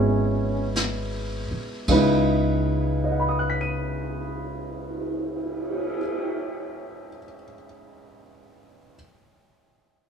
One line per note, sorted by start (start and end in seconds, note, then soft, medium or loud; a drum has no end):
0.00 1.47 G#1 medium
0.00 1.87 G#3 soft
0.00 1.89 B3 soft
0.00 0.79 C#4 medium
0.00 1.89 C#4 soft
0.00 1.88 D#4 soft
0.00 1.89 E4 soft
0.00 1.90 F#4 soft
0.00 1.90 G#4 soft
0.00 1.90 B4 soft
0.76 snare soft
0.76 hi-hat pedal soft
1.51 muted upright bass stroke soft
1.88 5.93 C#2 medium
1.88 5.97 C#3 soft
1.88 5.97 G#3 soft
1.88 5.98 D#4 soft
1.88 5.99 E4 soft
1.88 6.00 B4 medium
1.88 kick soft
1.88 crash soft
2.66 cymbal swell soft
3.04 7.09 D#5 soft
3.12 7.16 F#5 soft
3.20 7.24 B5 soft
3.29 7.33 D#6 soft
3.39 7.44 F#6 soft
3.50 7.54 B6 soft
3.61 7.66 D#7 soft